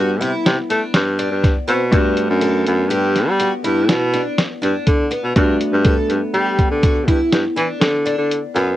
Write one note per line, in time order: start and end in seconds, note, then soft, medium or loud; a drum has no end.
0.00 0.22 G2 medium
0.00 1.89 G3 medium
0.00 1.89 B3 medium
0.00 1.90 D4 medium
0.00 1.89 E4 medium
0.21 0.32 C3 medium
0.21 0.47 E4 medium
0.21 closed hi-hat medium
0.46 0.57 C3 medium
0.46 snare loud
0.46 closed hi-hat medium
0.70 0.81 A3 medium
0.70 0.96 D4 medium
0.70 closed hi-hat medium
0.94 1.28 G2 medium
0.94 snare loud
0.94 closed hi-hat medium
1.19 1.45 D4 medium
1.19 closed hi-hat medium
1.31 1.53 G2 medium
1.44 kick loud
1.44 snare soft
1.44 closed hi-hat medium
1.68 1.90 B2 medium
1.68 1.81 C4 medium
1.68 closed hi-hat medium
1.92 2.26 G2 medium
1.92 5.31 A3 medium
1.92 5.32 B3 medium
1.92 5.32 D4 medium
1.92 2.19 D4 medium
1.92 5.32 F#4 medium
1.92 kick loud
1.92 closed hi-hat medium
2.17 closed hi-hat medium
2.30 2.63 F#2 medium
2.41 2.68 A4 medium
2.41 closed hi-hat medium
2.67 2.93 F#2 medium
2.67 closed hi-hat medium
2.90 3.30 G2 loud
2.90 3.16 G4 medium
2.90 closed hi-hat medium
3.16 snare soft
3.16 closed hi-hat medium
3.28 3.50 G3 medium
3.40 3.53 F#4 medium
3.40 closed hi-hat medium
3.64 3.91 G2 medium
3.64 3.90 E4 medium
3.64 closed hi-hat medium
3.89 4.22 B2 medium
3.89 snare loud
3.89 closed hi-hat medium
4.14 4.39 D4 medium
4.14 closed hi-hat medium
4.38 snare medium
4.38 closed hi-hat medium
4.62 4.74 G2 medium
4.62 4.88 D4 medium
4.62 closed hi-hat medium
4.87 5.09 D3 medium
4.87 kick loud
4.87 closed hi-hat medium
5.11 5.24 B3 medium
5.11 closed hi-hat medium
5.24 5.35 B2 medium
5.36 5.58 G2 medium
5.36 8.76 A3 medium
5.36 8.76 B3 medium
5.36 5.62 D4 medium
5.36 8.76 D4 medium
5.36 8.76 F#4 medium
5.36 kick medium
5.36 closed hi-hat medium
5.60 closed hi-hat medium
5.72 5.94 G2 medium
5.84 6.10 A4 medium
5.84 kick loud
5.84 closed hi-hat medium
6.09 6.20 G2 medium
6.09 closed hi-hat medium
6.34 6.67 G3 medium
6.34 6.60 G4 medium
6.34 closed hi-hat medium
6.59 kick medium
6.59 closed hi-hat medium
6.70 7.09 D3 medium
6.83 6.96 F#4 medium
6.83 kick loud
6.83 closed hi-hat medium
7.08 7.19 G2 medium
7.08 7.34 E4 medium
7.08 kick medium
7.08 closed hi-hat soft
7.32 7.43 G2 medium
7.32 snare medium
7.32 closed hi-hat medium
7.57 7.68 E3 medium
7.57 7.82 D4 medium
7.57 closed hi-hat medium
7.81 8.14 D3 medium
7.81 snare loud
7.81 closed hi-hat medium
8.06 8.32 D4 medium
8.06 closed hi-hat medium
8.18 8.40 D3 medium
8.32 closed hi-hat medium
8.55 8.77 F#2 medium
8.55 8.68 B3 medium
8.55 closed hi-hat medium